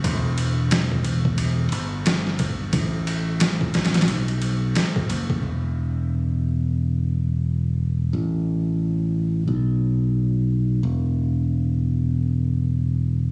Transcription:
0.04 1.70 E1 loud
0.04 kick loud
0.04 ride medium
0.38 ride medium
0.71 snare loud
0.71 ride medium
0.91 kick medium
1.04 ride medium
1.25 kick loud
1.38 ride medium
1.72 2.71 G1 medium
1.72 ride medium
2.06 snare loud
2.06 ride medium
2.27 snare medium
2.39 kick medium
2.39 ride medium
2.73 4.06 A1 loud
2.73 kick loud
2.73 ride medium
3.07 ride medium
3.40 snare loud
3.40 ride medium
3.61 kick medium
3.74 snare medium
3.74 ride medium
3.85 snare medium
3.85 ride medium
3.94 snare medium
3.94 ride medium
4.01 snare medium
4.01 ride medium
4.08 4.73 B1 loud
4.08 ride medium
4.28 ride soft
4.42 ride medium
4.75 snare loud
4.75 ride medium
4.96 kick medium
5.09 5.40 F#1 loud
5.09 ride medium
5.30 kick medium
5.43 8.10 E1 medium
8.13 9.45 A1 medium
9.48 10.80 B1 medium
10.83 13.31 E1 medium

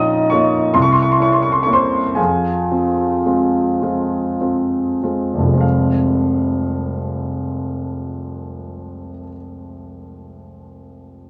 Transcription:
0.00 0.76 A#1 medium
0.00 0.27 C#4 soft
0.00 0.75 D#4 medium
0.00 0.27 F4 soft
0.00 0.27 D#5 medium
0.00 0.27 A#5 medium
0.00 0.31 D#6 medium
0.30 0.70 A#3 soft
0.30 0.70 C#4 soft
0.30 0.70 F4 soft
0.30 0.70 C#5 soft
0.30 0.73 C#6 medium
0.74 1.17 C2 medium
0.74 1.77 E4 medium
0.74 0.83 C6 medium
0.82 0.92 C#6 medium
0.92 1.02 C6 medium
1.02 1.12 C#6 medium
1.12 1.22 C6 medium
1.18 1.61 C#4 soft
1.18 1.61 E4 soft
1.18 1.32 C#6 medium
1.32 1.42 C6 medium
1.42 1.53 C#6 medium
1.52 1.63 C6 medium
1.63 2.13 A#3 soft
1.63 2.13 C#4 soft
1.63 2.13 E4 soft
1.63 1.74 C#6 medium
1.73 2.14 C5 soft
1.73 2.16 C6 medium
2.15 2.69 F2 soft
2.15 4.68 F4 medium
2.15 3.78 G#4 soft
2.15 3.78 F5 soft
2.15 3.82 G#5 medium
2.71 3.22 C4 soft
2.71 3.22 F4 soft
3.25 3.78 G#3 soft
3.25 3.78 C4 soft
3.25 3.79 F4 soft
3.82 4.36 G#3 soft
3.82 4.37 C4 soft
3.82 4.37 F4 soft
4.41 4.98 C4 soft
4.41 4.98 F4 soft
5.03 5.46 G#3 soft
5.03 5.51 C4 soft
5.03 5.56 F4 soft
5.34 9.08 F1 soft
5.39 9.13 C2 soft
5.43 9.18 F3 soft
5.48 9.23 G#3 soft
5.53 9.27 C4 soft
5.57 9.32 F4 soft
5.57 9.35 F5 soft

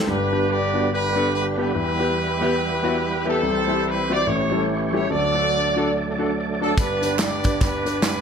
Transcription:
0.00 0.30 G5 medium
0.07 1.71 G1 medium
0.07 1.71 G2 medium
0.07 1.73 D3 medium
0.07 4.22 G3 medium
0.07 3.39 B3 medium
0.07 0.87 D4 medium
0.07 4.22 G4 medium
0.07 0.49 G4 medium
0.07 1.73 B4 medium
0.07 0.49 B4 loud
0.32 0.42 B3 medium
0.32 0.43 D4 medium
0.32 0.43 G4 medium
0.50 0.91 G4 medium
0.50 0.91 B4 medium
0.50 0.92 D5 loud
0.74 0.84 B3 medium
0.74 0.85 D4 medium
0.74 0.85 F#4 medium
0.92 1.72 D4 medium
0.92 1.59 G4 medium
0.92 1.31 B4 loud
1.15 1.26 B3 medium
1.15 1.27 D4 medium
1.15 1.27 A4 medium
1.34 1.45 B4 loud
1.58 1.68 B3 medium
1.58 1.69 D4 medium
1.58 3.23 E4 medium
1.58 1.69 G4 medium
1.58 3.23 G4 medium
1.58 3.23 B4 loud
1.75 3.38 E2 medium
1.75 5.06 E3 medium
1.75 3.38 E3 medium
1.75 3.41 B4 medium
1.99 2.10 B3 medium
1.99 2.10 E4 medium
1.99 2.11 G4 medium
2.41 2.52 B3 loud
2.41 2.52 E4 medium
2.41 2.53 G4 loud
2.83 2.94 B3 medium
2.83 2.94 E4 medium
2.83 2.95 F#4 loud
3.25 3.36 B3 medium
3.25 4.06 C4 medium
3.25 3.36 E4 medium
3.25 4.06 E4 medium
3.25 3.37 G4 loud
3.25 3.86 A4 loud
3.42 4.22 C2 medium
3.42 4.22 C3 medium
3.42 4.26 C4 medium
3.42 4.25 C5 medium
3.68 3.78 C4 medium
3.68 3.78 E4 medium
3.68 3.79 G4 medium
3.86 4.11 B4 loud
4.10 4.20 C4 medium
4.10 4.20 E4 medium
4.10 4.21 F#4 medium
4.10 4.27 D5 loud
4.26 5.06 A1 medium
4.26 5.06 A2 medium
4.26 6.75 A3 medium
4.26 5.09 C#4 medium
4.26 5.06 E4 medium
4.26 5.06 G4 medium
4.26 5.09 G4 medium
4.26 5.09 C#5 medium
4.26 4.64 C#5 loud
4.51 4.62 G3 medium
4.51 4.62 A3 medium
4.51 4.62 C#4 medium
4.51 4.62 E4 medium
4.51 4.62 A4 medium
4.93 5.03 G3 medium
4.93 5.04 A3 medium
4.93 5.04 C#4 medium
4.93 5.04 E4 medium
4.93 5.04 G4 medium
4.93 5.09 C#5 loud
5.10 6.74 D2 medium
5.10 6.74 D3 medium
5.10 6.76 F#3 medium
5.10 8.21 D4 medium
5.10 5.90 F#4 medium
5.10 6.76 A4 medium
5.10 5.90 A4 medium
5.10 8.21 D5 medium
5.10 5.94 D5 loud
5.34 5.45 D4 medium
5.34 5.46 F#4 medium
5.34 5.46 A4 medium
5.76 5.87 D4 medium
5.76 5.87 F#4 medium
5.76 5.88 A4 loud
6.18 6.29 D4 loud
6.18 6.29 F#4 medium
6.18 6.30 A4 loud
6.61 6.71 D4 medium
6.61 6.72 F#4 medium
6.61 6.77 A4 loud
6.61 6.72 A4 medium
6.77 8.21 G1 medium
6.77 8.21 G2 medium
6.77 8.21 G3 medium
6.77 8.21 B3 medium
6.77 7.58 D4 medium
6.77 7.18 G4 medium
6.77 8.21 B4 medium
6.77 7.19 B4 loud
6.77 kick loud
6.77 closed hi-hat loud
6.77 tambourine medium
7.02 7.13 D4 medium
7.02 7.13 G4 medium
7.02 7.13 B4 medium
7.02 closed hi-hat medium
7.02 tambourine medium
7.19 7.60 G4 medium
7.19 7.60 B4 medium
7.19 7.62 D5 loud
7.19 snare loud
7.19 clap loud
7.19 closed hi-hat medium
7.19 tambourine loud
7.44 7.54 D4 medium
7.44 7.55 G4 medium
7.44 7.55 B4 medium
7.44 kick medium
7.44 closed hi-hat medium
7.44 tambourine medium
7.61 8.21 D4 medium
7.61 8.21 G4 medium
7.61 8.01 B4 loud
7.61 kick loud
7.61 clap medium
7.61 closed hi-hat loud
7.61 tambourine medium
7.86 7.96 D4 medium
7.86 7.97 G4 medium
7.86 7.97 B4 medium
7.86 closed hi-hat medium
7.86 tambourine medium
8.02 8.21 B4 loud
8.02 snare loud
8.02 clap loud
8.02 closed hi-hat loud
8.02 tambourine loud

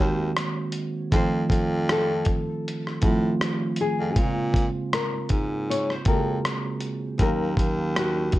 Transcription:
0.00 0.31 D#2 medium
0.00 1.11 D#3 medium
0.00 1.14 G#3 medium
0.00 1.14 A#3 medium
0.00 1.14 C4 medium
0.00 1.14 F#4 medium
0.00 1.14 C5 loud
0.37 cross-stick medium
0.37 closed hi-hat medium
0.72 closed hi-hat medium
1.11 1.45 F2 loud
1.11 2.39 D#3 medium
1.11 2.39 F3 medium
1.11 2.39 A3 medium
1.11 2.40 C4 medium
1.11 kick loud
1.11 closed hi-hat medium
1.15 2.41 F4 medium
1.15 1.91 C5 medium
1.50 2.43 F2 loud
1.50 kick medium
1.50 closed hi-hat medium
1.89 3.80 A4 medium
1.89 cross-stick loud
1.89 closed hi-hat medium
2.25 kick medium
2.25 closed hi-hat medium
2.68 closed hi-hat medium
2.87 cross-stick soft
3.01 3.35 A2 medium
3.01 3.98 D#3 medium
3.01 3.98 F3 medium
3.01 3.99 A3 medium
3.01 3.99 C4 medium
3.01 4.00 F4 medium
3.01 kick loud
3.01 closed hi-hat medium
3.41 cross-stick loud
3.41 closed hi-hat medium
3.76 closed hi-hat medium
3.81 4.94 G#4 medium
4.00 4.18 F2 medium
4.15 4.67 A#2 loud
4.15 4.23 C3 medium
4.15 5.43 G#3 medium
4.15 5.43 A#3 medium
4.15 5.44 C4 medium
4.15 5.44 F4 medium
4.15 kick loud
4.15 closed hi-hat medium
4.21 5.46 C#3 medium
4.54 kick medium
4.54 closed hi-hat medium
4.93 5.70 A#4 medium
4.93 cross-stick loud
4.93 closed hi-hat medium
5.14 5.20 G#2 soft
5.29 5.96 G#2 medium
5.29 kick medium
5.29 closed hi-hat medium
5.70 5.92 C#5 medium
5.70 closed hi-hat medium
5.90 6.08 C5 medium
5.90 cross-stick soft
6.05 6.39 F2 medium
6.05 7.02 C#3 medium
6.05 7.02 G#3 medium
6.05 7.03 A#3 medium
6.05 7.03 C4 medium
6.05 6.15 F#4 medium
6.05 7.21 A#4 medium
6.05 kick loud
6.05 closed hi-hat medium
6.15 7.07 G#4 medium
6.45 cross-stick loud
6.45 closed hi-hat medium
6.80 closed hi-hat medium
7.19 7.52 D#2 loud
7.19 8.39 D#3 medium
7.19 8.39 F#3 medium
7.19 8.39 A#3 medium
7.19 8.39 C#4 medium
7.19 7.99 A#4 medium
7.19 kick loud
7.19 closed hi-hat medium
7.23 8.39 F5 medium
7.57 8.39 D#2 medium
7.57 kick medium
7.57 closed hi-hat medium
7.96 8.39 F#4 medium
7.96 cross-stick loud
7.96 closed hi-hat medium
8.32 kick medium
8.32 closed hi-hat medium

